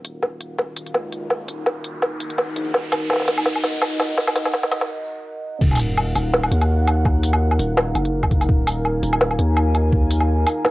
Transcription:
Already playing: D#1 D#4 A#4 F5 F#5, riser
0.04 closed hi-hat
0.22 kick, snare
0.40 closed hi-hat
0.58 kick, snare
0.76 closed hi-hat
0.86 closed hi-hat
0.94 C#2, kick, snare
1.12 closed hi-hat
1.30 kick, snare
1.48 D#1, closed hi-hat
1.66 kick, snare
1.84 closed hi-hat
2.02 kick, snare
2.20 closed hi-hat
2.30 closed hi-hat
2.38 kick, snare
2.56 A#1, closed hi-hat
2.74 D#1 D#5, kick, snare
2.92 snare, closed hi-hat, low woodblock
3.10 kick, snare, low woodblock
3.13 snare
3.16 snare
3.20 snare
3.22 snare
3.25 snare
3.28 snare, closed hi-hat
3.38 low woodblock
3.46 kick, snare
3.56 low woodblock
3.64 snare, closed hi-hat
3.74 closed hi-hat
3.82 C#2, kick, snare, low woodblock
4.00 snare, closed hi-hat, low woodblock
4.18 kick, snare
4.28 snare, low woodblock
4.36 snare, closed hi-hat
4.46 snare, low woodblock
4.54 kick, snare
4.63 snare
4.71 D#1, snare, closed hi-hat, low woodblock
4.81 snare
5.61 D#1 D#4 A#4 F5 F#5, kick, crash, sub drop
5.71 low woodblock
5.73 tambourine, low woodblock
5.75 low woodblock
5.77 closed hi-hat, low woodblock
5.98 low woodblock
6.15 D#1, closed hi-hat, tambourine, low woodblock
6.34 snare
6.43 low woodblock
6.51 D#2, closed hi-hat
6.61 closed hi-hat, low woodblock
6.87 closed hi-hat, low woodblock
7.05 kick, low woodblock
7.23 closed hi-hat, tambourine
7.33 low woodblock
7.51 low woodblock
7.59 D#1, closed hi-hat, tambourine
7.77 snare, low woodblock
7.95 F#1, closed hi-hat, low woodblock
8.05 closed hi-hat
8.23 kick, low woodblock
8.31 kick, closed hi-hat
8.41 tambourine, low woodblock
8.49 D#1 G#5, kick
8.67 closed hi-hat, tambourine, low woodblock
8.85 low woodblock
9.03 D#1, closed hi-hat, tambourine
9.13 low woodblock
9.21 snare
9.31 low woodblock
9.39 D#2, closed hi-hat
9.57 low woodblock
9.75 closed hi-hat, low woodblock
9.93 kick
10.11 closed hi-hat, tambourine
10.21 low woodblock
10.47 closed hi-hat, tambourine, low woodblock
10.65 snare, low woodblock

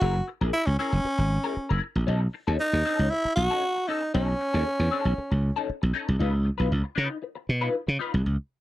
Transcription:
Already playing: F#4
0.01 F#1 E4 G#4 A#4
0.15 muted clean electric guitar stroke
0.28 muted clean electric guitar stroke
0.41 A#1 E4 G#4 A#4
0.53 E4, muted clean electric guitar stroke
0.66 C#2 C#4, muted clean electric guitar stroke
0.79 C#4 E4 G#4 A#4
0.93 F#1, muted clean electric guitar stroke
1.04 muted slap bass stroke, muted clean electric guitar stroke
1.18 G#1, muted clean electric guitar stroke
1.44 E4 G#4 A#4
1.56 muted clean electric guitar stroke, muted slap bass stroke
1.69 F#1 E4 G#4 A#4
1.82 muted clean electric guitar stroke
1.95 A#1, muted clean electric guitar stroke
2.07 B1 C#4 D#4 A4
2.21 muted clean electric guitar stroke
2.34 muted clean electric guitar stroke
2.47 D#2 C#4 D#4 A4
2.60 D#4, muted clean electric guitar stroke
2.73 D#2, muted clean electric guitar stroke
2.85 C#4 D#4 A4
2.99 C#2, muted clean electric guitar stroke
3.10 E4, muted clean electric guitar stroke
3.25 muted slap bass stroke, muted clean electric guitar stroke
3.35 B1 F#4
3.50 C#4 D#4 A4
3.76 muted clean electric guitar stroke
3.88 C#4 D#4 A4
4.02 muted clean electric guitar stroke
4.14 B1 C#4 D#4 A4
4.28 muted clean electric guitar stroke
4.40 muted clean electric guitar stroke
4.54 D#2 C#4 D#4 A4
4.66 muted clean electric guitar stroke
4.79 E2, muted clean electric guitar stroke
4.91 C#4 D#4 A4
5.05 B1, muted clean electric guitar stroke
5.17 muted clean electric guitar stroke, muted slap bass stroke
5.31 C#2, muted clean electric guitar stroke
5.56 C#4 D#4 A4
5.69 muted slap bass stroke
5.82 B1, muted clean electric guitar stroke
5.94 C#4 D#4 A4
6.08 C2, muted clean electric guitar stroke
6.19 C#2 D#4 F4 B4
6.33 muted clean electric guitar stroke
6.45 muted clean electric guitar stroke
6.58 B1 D#4 F4 B4
6.70 C#2, muted clean electric guitar stroke
6.84 muted clean electric guitar stroke
6.96 C#3 D#4 F4 B4
7.10 muted clean electric guitar stroke
7.22 muted clean electric guitar stroke
7.35 muted clean electric guitar stroke
7.49 B2
7.61 D#4 F4 B4
7.87 C#3, muted clean electric guitar stroke
7.99 D#4 F4 B4
8.13 C2, muted clean electric guitar stroke
8.26 C#2

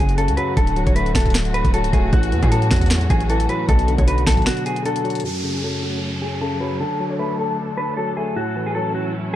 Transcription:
Already playing: F#2 C#3 F#3 A3 F#4
0.00 F#1 G#4
0.09 closed hi-hat
0.18 C#3 A4, closed hi-hat
0.28 C#2, closed hi-hat
0.37 F#3 B4, closed hi-hat
0.57 D1 D3 A4, kick, closed hi-hat
0.67 closed hi-hat
0.76 F#3, closed hi-hat
0.87 D1 C#5, kick, closed hi-hat
0.96 A3 B4, closed hi-hat
1.06 closed hi-hat
1.15 D1 A4, finger snap, kick, snare, closed hi-hat, open hi-hat
1.20 closed hi-hat
1.26 kick, closed hi-hat
1.30 closed hi-hat
1.34 finger snap, snare, closed hi-hat
1.45 closed hi-hat
1.54 B4, closed hi-hat
1.65 D1, kick, closed hi-hat
1.74 F#3 A4, closed hi-hat
1.84 C#1, closed hi-hat
1.93 D1 A3 G#4, kick, closed hi-hat
2.13 A1 A2 E3 C#4 F#4, kick, closed hi-hat
2.23 closed hi-hat
2.32 E2 E3, closed hi-hat
2.43 A2 G#4, kick, closed hi-hat
2.52 F#3 A4, closed hi-hat
2.62 closed hi-hat
2.71 E2 F#4, finger snap, kick, snare, closed hi-hat
2.76 closed hi-hat
2.81 kick, closed hi-hat
2.86 closed hi-hat
2.90 finger snap, snare, closed hi-hat
3.01 closed hi-hat
3.10 A1 G#4, kick, closed hi-hat
3.20 closed hi-hat
3.30 E3 A4, closed hi-hat
3.40 closed hi-hat
3.49 F#3 B4, closed hi-hat
3.69 B1 B2 D3 B3 A4, kick, closed hi-hat
3.79 closed hi-hat
3.88 D3, closed hi-hat
3.98 B1 C#5, kick, closed hi-hat
4.07 F#3 B4, closed hi-hat
4.18 closed hi-hat
4.27 B1 A4, finger snap, kick, snare, closed hi-hat, open hi-hat
4.32 closed hi-hat
4.37 kick, closed hi-hat
4.42 closed hi-hat
4.46 F#4, finger snap, snare, closed hi-hat
4.57 closed hi-hat
4.66 G#4, closed hi-hat
4.76 closed hi-hat
4.85 D3 A4, closed hi-hat
4.96 closed hi-hat
5.05 F#3, closed hi-hat
5.10 closed hi-hat
5.15 closed hi-hat
5.20 closed hi-hat
5.24 F#2 F#3 A3 C#4 F#4 A4, downlifter
5.44 C#3
5.54 G#4
5.64 F#3 A4
5.83 F#4
6.22 G#4
6.41 C#3 A4
6.60 F#3 B4
6.80 D3 A3 D4 A4
7.00 F#3
7.10 C#5
7.19 A3 B4
7.39 A4
7.77 B4
7.97 F#3 A4
8.17 A3 G#4
8.36 A2 F#3 C#4 E4 F#4
8.56 E3
8.66 G#4
8.75 F#3 A4
8.95 F#4

